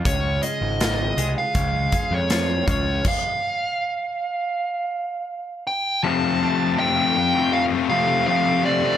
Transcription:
<<
  \new Staff \with { instrumentName = "Lead electric guitar" } { \time 4/4 \key f \major \tempo 4 = 80 des''8 ees''4~ ees''16 f''4 des''8. des''8 | f''2.~ f''8 g''8 | a''4 g''4 f''8 f''8 f''8 d''8 | }
  \new Staff \with { instrumentName = "String machine" } { \time 4/4 \key f \major r1 | r1 | <c' g' a' f''>1 | }
  \new Staff \with { instrumentName = "Clean electric guitar" } { \time 4/4 \key f \major des8 aes8 f'8 aes8 des'8 aes8 f'8 des'8 | r1 | r1 | }
  \new Staff \with { instrumentName = "Distorted electric guitar" } { \time 4/4 \key f \major r1 | r1 | <f, c f a c'>8 <c f a c'>16 <f a c'>16 <f, c f a c'>8. <f a c'>8 <f a c'>16 <c f a c'>8 <f, c f a c'>16 <f a c'>16 <c f a c'>16 <f a c'>16 | }
  \new Staff \with { instrumentName = "Picked electric bass" } { \clef bass \time 4/4 \key f \major des,8 r16 aes,,8. c,16 r16 des,8 r16 f,8. des,8 | r1 | r1 | }
  \new DrumStaff \with { instrumentName = "Drums" } \drummode { \time 4/4 <hh bd>8 hh8 <hh sn>8 hh8 <hh bd>8 <hh bd>8 <hh sn>8 <hh bd>8 | <cymc bd>4 r4 r4 r4 | r4 r4 r4 r4 | }
>>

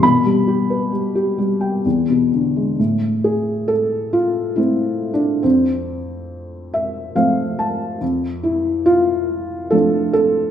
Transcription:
<<
  \new Staff \with { instrumentName = "Felt piano" } { \time 3/4 \key e \minor \tempo 4 = 69 << { r2. | \key a \minor r2. | r4. e''8 f''8 a''8 | r2. | } \\ { b''2~ b''8 r8 | r8 gis'8 a'8 f'8 \tuplet 3/2 { e'4 d'8 } | c'2 r4 | r8 e'8 f'4 a'8 a'8 | } >> }
  \new Staff \with { instrumentName = "Felt piano" } { \clef bass \time 3/4 \key e \minor b,16 g16 g'16 b'16 g16 g'16 g16 g''16 e,16 b,16 d16 gis16 | \key a \minor a,2 <a c'>4 | f,2 <f a c'>4 | f,2 <f a d'>4 | }
>>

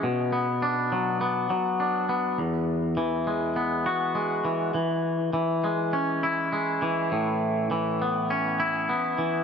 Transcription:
\new Staff \with { instrumentName = "Clean electric guitar" } { \clef bass \time 4/4 \key e \mixolydian \tempo 4 = 102 b,8 b8 d'8 fis8 b8 fis8 d'8 b8 | e,4 e8 gis8 b8 fis'8 gis8 e8 | e4 e8 gis8 cis'8 e'8 gis8 e8 | a,4 e8 b8 cis'8 e'8 b8 e8 | }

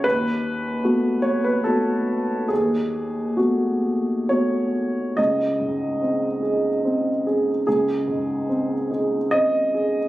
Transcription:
<<
  \new Staff \with { instrumentName = "Upright piano" } { \time 3/4 \key gis \phrygian \tempo 4 = 72 b'4. cis''16 b'16 a'4 | gis'4 fis'4 cis''4 | dis''2. | gis'2 dis''4 | }
  \new Staff \with { instrumentName = "Upright piano" } { \time 3/4 \key gis \phrygian dis,4 <a b fis'>4 <a b fis'>4 | dis,4 <a b>4 <a b fis'>4 | cis,8 gis,8 bis8 gis'8 bis8 gis'8 | cis,8 gis,8 bis8 gis'8 bis8 gis'8 | }
>>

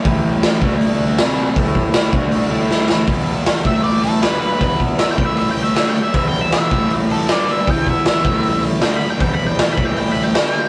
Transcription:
<<
  \new Staff \with { instrumentName = "Lead electric guitar" } { \time 4/4 \key a \major \tempo 4 = 157 r1 | r1 | r4. e''8 d''8 a'8 b'8 b'8~ | b'8 r8 \tuplet 3/2 { e''8 g''8 e''8 e''8 g''8 e''8 e''8 g''8 e''8 } |
\tuplet 3/2 { e''8 g''8 e''8 } e''4 r8 a'8 d''8 e''8 | g''8 e''2 r8 \tuplet 3/2 { g''8 b''8 g''8 } | \tuplet 3/2 { g''8 b''8 g''8 g''8 b''8 g''8 g''8 b''8 g''8 } g''4 | }
  \new Staff \with { instrumentName = "Overdriven electric guitar" } { \clef bass \time 4/4 \key a \major <a, e a>4. <d a d'>4. <c g c'>4 | <a e' a'>4. <d a d'>4 <a e' a'>4 <a, e a>8 | <e, b, e>4. <a, e a>4. <g, d g>4 | <e b e'>4. <a, e a>4. <d a d'>8 r8 |
<e, b, e>4. <a, e a>4. <g, d g>4 | <e b e'>4. <a, e a>4. <d a d'>8 r8 | <e, b, e>4. <a, e a>4. <g, d g>4 | }
  \new DrumStaff \with { instrumentName = "Drums" } \drummode { \time 4/4 <hho bd>4 <hho sn>8 bd8 hho4 <hho sn>4 | <hho bd>8 bd8 <hho sn>8 bd8 hho4 sn8 sn8 | <hho bd>8 hho8 <hho sn>8 <hho bd>8 hho8 hho8 <hho sn>8 hho8 | <hho bd>8 <hho bd>8 <hho sn>8 <hho bd>8 hho8 hho8 <hho sn>8 hho8 |
<hho bd>8 hho8 <hho sn>8 <hho bd>8 hho8 hho8 <hho sn>8 hho8 | <hho bd>8 <hho bd>8 <hho sn>8 <hho bd>8 hho8 hho8 <hho sn>8 hho8 | <hho bd>8 hho8 <hho sn>8 <hho bd>8 hho8 hho8 <hho sn>8 hho8 | }
>>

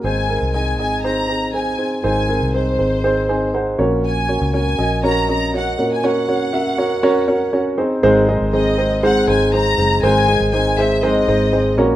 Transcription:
<<
  \new Staff \with { instrumentName = "Violin section" } { \time 4/4 \key gis \minor \tempo 4 = 120 gis''4 gis''8 gis''8 ais''4 gis''4 | gis''4 bis'2 r4 | gis''4 gis''4 ais''8 ais''8 fis''8. gis''16 | fis''2. r4 |
r4 dis''4 fis''8 gis''8 ais''4 | gis''4 gis''8 e''8 dis''4. r8 | }
  \new Staff \with { instrumentName = "Grand piano" } { \time 4/4 \key gis \minor << { r1 | r2 r8 gis''8 fis''4 | r1 | r1 |
r1 | r1 | } \\ { <bis dis' gis' bis'>8 <bis dis' gis' ais'>8 <bis dis' gis' dis''>8 <bis dis' gis' dis''>8 <bis dis' gis' bis'>8 <bis dis' gis' bis'>8 <bis dis' gis' bis'>8 <bis dis' gis' bis'>8 | <bis dis' gis' bis'>8 <bis dis' gis' ais'>8 <bis dis' gis' bis'>8 <bis dis' gis' bis'>8 <bis dis' gis' bis'>8 <bis dis' gis' bis'>8 <bis dis' gis' bis'>8 <cis' fis' ais' cis''>8~ | <cis' fis' ais' cis''>8 <cis' fis' ais' cis''>8 <cis' fis' ais' cis''>8 <cis' fis' ais' dis''>8 <cis' fis' ais' cis''>8 <cis' fis' ais' dis''>8 <cis' fis' ais' cis''>8 <cis' fis' ais' cis''>8 | <cis' fis' ais' cis''>8 <cis' fis' ais' cis''>8 <cis' fis' ais' e''>8 <cis' fis' ais' cis''>8 <cis' fis' ais' cis''>8 <cis' fis' ais' cis''>8 <cis' fis' ais' cis''>8 <bis dis' gis' bis'>8 |
<gis bis dis' gis' bis'>8 <gis bis dis' gis' dis''>8 <gis bis dis' gis' bis'>8 <gis bis dis' gis' bis'>8 <gis bis dis' gis' bis'>8 <gis bis dis' gis' bis'>8 <gis bis dis' gis' bis'>8 <gis bis dis' gis' bis'>8 | <gis bis dis' gis' bis'>8 <gis bis dis' gis' dis''>8 <gis bis dis' gis' bis'>8 <gis bis dis' gis' bis'>8 <gis bis dis' gis' bis'>8 <gis bis dis' gis' bis'>8 <gis bis dis' gis' bis'>8 <ais cis' fis' ais' cis''>8 | } >> }
  \new Staff \with { instrumentName = "Grand piano" } { \clef bass \time 4/4 \key gis \minor <gis, dis>4. r2 r8 | <gis, dis>4. r2 <ais, ais>8~ | <ais, ais>4 r2 r8 <ais, ais>8~ | <ais, ais>4 r2. |
<gis, dis>4. r2 r8 | <gis, dis>4. r2 ais,8 | }
  \new Staff \with { instrumentName = "Fingered electric bass" } { \clef bass \time 4/4 \key gis \minor gis,,8. bis,,8. gis,,2 r8 | gis,,8. bis,,8. gis,,2 ais,,8~ | ais,,8. cis,8. ais,,2 r8 | r1 |
gis,,8. gis,,4.~ gis,,16 gis,,4 fis,,8 | gis,,8. gis,,4.~ gis,,16 gis,,4 ais,,8 | }
>>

